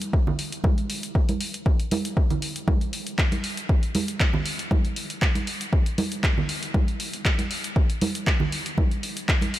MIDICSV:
0, 0, Header, 1, 2, 480
1, 0, Start_track
1, 0, Tempo, 508475
1, 607, Time_signature, 4, 2, 24, 8
1, 9054, End_track
2, 0, Start_track
2, 0, Title_t, "Drums"
2, 15, Note_on_c, 9, 42, 63
2, 109, Note_off_c, 9, 42, 0
2, 126, Note_on_c, 9, 36, 113
2, 221, Note_off_c, 9, 36, 0
2, 256, Note_on_c, 9, 64, 78
2, 350, Note_off_c, 9, 64, 0
2, 366, Note_on_c, 9, 46, 107
2, 461, Note_off_c, 9, 46, 0
2, 495, Note_on_c, 9, 42, 64
2, 589, Note_off_c, 9, 42, 0
2, 602, Note_on_c, 9, 63, 98
2, 607, Note_on_c, 9, 36, 116
2, 696, Note_off_c, 9, 63, 0
2, 701, Note_off_c, 9, 36, 0
2, 735, Note_on_c, 9, 42, 33
2, 829, Note_off_c, 9, 42, 0
2, 846, Note_on_c, 9, 46, 104
2, 941, Note_off_c, 9, 46, 0
2, 974, Note_on_c, 9, 42, 61
2, 1069, Note_off_c, 9, 42, 0
2, 1087, Note_on_c, 9, 36, 105
2, 1181, Note_off_c, 9, 36, 0
2, 1215, Note_on_c, 9, 42, 48
2, 1220, Note_on_c, 9, 63, 60
2, 1309, Note_off_c, 9, 42, 0
2, 1314, Note_off_c, 9, 63, 0
2, 1327, Note_on_c, 9, 46, 107
2, 1421, Note_off_c, 9, 46, 0
2, 1455, Note_on_c, 9, 42, 60
2, 1550, Note_off_c, 9, 42, 0
2, 1567, Note_on_c, 9, 36, 122
2, 1661, Note_off_c, 9, 36, 0
2, 1695, Note_on_c, 9, 42, 47
2, 1789, Note_off_c, 9, 42, 0
2, 1807, Note_on_c, 9, 46, 106
2, 1811, Note_on_c, 9, 63, 86
2, 1901, Note_off_c, 9, 46, 0
2, 1906, Note_off_c, 9, 63, 0
2, 1935, Note_on_c, 9, 42, 62
2, 2030, Note_off_c, 9, 42, 0
2, 2047, Note_on_c, 9, 36, 108
2, 2141, Note_off_c, 9, 36, 0
2, 2175, Note_on_c, 9, 42, 35
2, 2177, Note_on_c, 9, 64, 72
2, 2270, Note_off_c, 9, 42, 0
2, 2271, Note_off_c, 9, 64, 0
2, 2286, Note_on_c, 9, 46, 103
2, 2381, Note_off_c, 9, 46, 0
2, 2415, Note_on_c, 9, 42, 61
2, 2509, Note_off_c, 9, 42, 0
2, 2527, Note_on_c, 9, 36, 113
2, 2527, Note_on_c, 9, 63, 87
2, 2621, Note_off_c, 9, 36, 0
2, 2621, Note_off_c, 9, 63, 0
2, 2655, Note_on_c, 9, 42, 33
2, 2749, Note_off_c, 9, 42, 0
2, 2766, Note_on_c, 9, 46, 103
2, 2860, Note_off_c, 9, 46, 0
2, 2894, Note_on_c, 9, 42, 61
2, 2989, Note_off_c, 9, 42, 0
2, 3007, Note_on_c, 9, 36, 102
2, 3008, Note_on_c, 9, 39, 107
2, 3101, Note_off_c, 9, 36, 0
2, 3102, Note_off_c, 9, 39, 0
2, 3134, Note_on_c, 9, 42, 48
2, 3134, Note_on_c, 9, 63, 62
2, 3229, Note_off_c, 9, 42, 0
2, 3229, Note_off_c, 9, 63, 0
2, 3245, Note_on_c, 9, 46, 103
2, 3340, Note_off_c, 9, 46, 0
2, 3374, Note_on_c, 9, 42, 62
2, 3468, Note_off_c, 9, 42, 0
2, 3487, Note_on_c, 9, 36, 117
2, 3581, Note_off_c, 9, 36, 0
2, 3614, Note_on_c, 9, 42, 49
2, 3708, Note_off_c, 9, 42, 0
2, 3725, Note_on_c, 9, 46, 101
2, 3729, Note_on_c, 9, 63, 84
2, 3820, Note_off_c, 9, 46, 0
2, 3824, Note_off_c, 9, 63, 0
2, 3854, Note_on_c, 9, 42, 64
2, 3948, Note_off_c, 9, 42, 0
2, 3967, Note_on_c, 9, 36, 108
2, 3967, Note_on_c, 9, 39, 111
2, 4061, Note_off_c, 9, 36, 0
2, 4062, Note_off_c, 9, 39, 0
2, 4092, Note_on_c, 9, 64, 76
2, 4187, Note_off_c, 9, 64, 0
2, 4206, Note_on_c, 9, 46, 103
2, 4300, Note_off_c, 9, 46, 0
2, 4335, Note_on_c, 9, 42, 63
2, 4429, Note_off_c, 9, 42, 0
2, 4447, Note_on_c, 9, 36, 107
2, 4455, Note_on_c, 9, 63, 92
2, 4541, Note_off_c, 9, 36, 0
2, 4549, Note_off_c, 9, 63, 0
2, 4575, Note_on_c, 9, 42, 36
2, 4669, Note_off_c, 9, 42, 0
2, 4686, Note_on_c, 9, 46, 100
2, 4780, Note_off_c, 9, 46, 0
2, 4815, Note_on_c, 9, 42, 63
2, 4909, Note_off_c, 9, 42, 0
2, 4927, Note_on_c, 9, 36, 100
2, 4928, Note_on_c, 9, 39, 111
2, 5021, Note_off_c, 9, 36, 0
2, 5022, Note_off_c, 9, 39, 0
2, 5053, Note_on_c, 9, 63, 58
2, 5055, Note_on_c, 9, 42, 51
2, 5148, Note_off_c, 9, 63, 0
2, 5149, Note_off_c, 9, 42, 0
2, 5166, Note_on_c, 9, 46, 101
2, 5260, Note_off_c, 9, 46, 0
2, 5294, Note_on_c, 9, 42, 65
2, 5389, Note_off_c, 9, 42, 0
2, 5406, Note_on_c, 9, 36, 117
2, 5501, Note_off_c, 9, 36, 0
2, 5534, Note_on_c, 9, 42, 50
2, 5629, Note_off_c, 9, 42, 0
2, 5646, Note_on_c, 9, 46, 99
2, 5648, Note_on_c, 9, 63, 91
2, 5740, Note_off_c, 9, 46, 0
2, 5742, Note_off_c, 9, 63, 0
2, 5774, Note_on_c, 9, 42, 65
2, 5869, Note_off_c, 9, 42, 0
2, 5886, Note_on_c, 9, 36, 103
2, 5888, Note_on_c, 9, 39, 112
2, 5981, Note_off_c, 9, 36, 0
2, 5983, Note_off_c, 9, 39, 0
2, 6021, Note_on_c, 9, 64, 72
2, 6115, Note_off_c, 9, 64, 0
2, 6126, Note_on_c, 9, 46, 99
2, 6221, Note_off_c, 9, 46, 0
2, 6255, Note_on_c, 9, 42, 63
2, 6349, Note_off_c, 9, 42, 0
2, 6366, Note_on_c, 9, 36, 111
2, 6369, Note_on_c, 9, 63, 94
2, 6461, Note_off_c, 9, 36, 0
2, 6464, Note_off_c, 9, 63, 0
2, 6495, Note_on_c, 9, 42, 37
2, 6590, Note_off_c, 9, 42, 0
2, 6607, Note_on_c, 9, 46, 100
2, 6701, Note_off_c, 9, 46, 0
2, 6735, Note_on_c, 9, 42, 64
2, 6829, Note_off_c, 9, 42, 0
2, 6846, Note_on_c, 9, 36, 100
2, 6848, Note_on_c, 9, 39, 117
2, 6941, Note_off_c, 9, 36, 0
2, 6943, Note_off_c, 9, 39, 0
2, 6972, Note_on_c, 9, 63, 63
2, 6974, Note_on_c, 9, 42, 52
2, 7066, Note_off_c, 9, 63, 0
2, 7069, Note_off_c, 9, 42, 0
2, 7086, Note_on_c, 9, 46, 100
2, 7181, Note_off_c, 9, 46, 0
2, 7215, Note_on_c, 9, 42, 69
2, 7309, Note_off_c, 9, 42, 0
2, 7326, Note_on_c, 9, 36, 113
2, 7421, Note_off_c, 9, 36, 0
2, 7454, Note_on_c, 9, 42, 50
2, 7549, Note_off_c, 9, 42, 0
2, 7566, Note_on_c, 9, 46, 97
2, 7569, Note_on_c, 9, 63, 83
2, 7660, Note_off_c, 9, 46, 0
2, 7664, Note_off_c, 9, 63, 0
2, 7695, Note_on_c, 9, 42, 68
2, 7789, Note_off_c, 9, 42, 0
2, 7806, Note_on_c, 9, 36, 100
2, 7808, Note_on_c, 9, 39, 112
2, 7901, Note_off_c, 9, 36, 0
2, 7903, Note_off_c, 9, 39, 0
2, 7929, Note_on_c, 9, 64, 76
2, 8024, Note_off_c, 9, 64, 0
2, 8047, Note_on_c, 9, 46, 98
2, 8141, Note_off_c, 9, 46, 0
2, 8175, Note_on_c, 9, 42, 68
2, 8269, Note_off_c, 9, 42, 0
2, 8285, Note_on_c, 9, 63, 87
2, 8287, Note_on_c, 9, 36, 108
2, 8379, Note_off_c, 9, 63, 0
2, 8381, Note_off_c, 9, 36, 0
2, 8415, Note_on_c, 9, 42, 38
2, 8509, Note_off_c, 9, 42, 0
2, 8526, Note_on_c, 9, 46, 99
2, 8620, Note_off_c, 9, 46, 0
2, 8654, Note_on_c, 9, 42, 65
2, 8748, Note_off_c, 9, 42, 0
2, 8767, Note_on_c, 9, 36, 102
2, 8768, Note_on_c, 9, 39, 121
2, 8861, Note_off_c, 9, 36, 0
2, 8862, Note_off_c, 9, 39, 0
2, 8888, Note_on_c, 9, 63, 57
2, 8894, Note_on_c, 9, 42, 54
2, 8983, Note_off_c, 9, 63, 0
2, 8989, Note_off_c, 9, 42, 0
2, 9005, Note_on_c, 9, 46, 103
2, 9054, Note_off_c, 9, 46, 0
2, 9054, End_track
0, 0, End_of_file